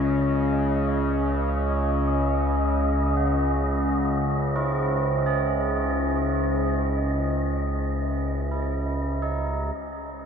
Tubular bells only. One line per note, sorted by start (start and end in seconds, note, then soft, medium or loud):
0.00 0.39 C#4 medium
3.17 4.76 F#4 medium
4.56 5.45 C4 medium
4.56 8.50 E4 medium
5.26 9.95 G#4 medium
8.51 9.41 E4 soft
9.22 10.26 D#4 medium
9.76 10.26 C#4 soft